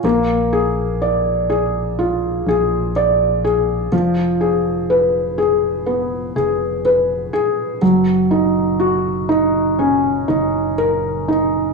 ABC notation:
X:1
M:4/4
L:1/8
Q:1/4=62
K:Ebm
V:1 name="Felt piano"
B, A =d A F A d A | F, A c A C A c A | G, E G E D E B E |]
V:2 name="FM bass" clef=bass
B,,,4- B,,, B,,,3 | F,,,4- F,,, F,,,2 z | G,,,4- G,,, G,,,3 |]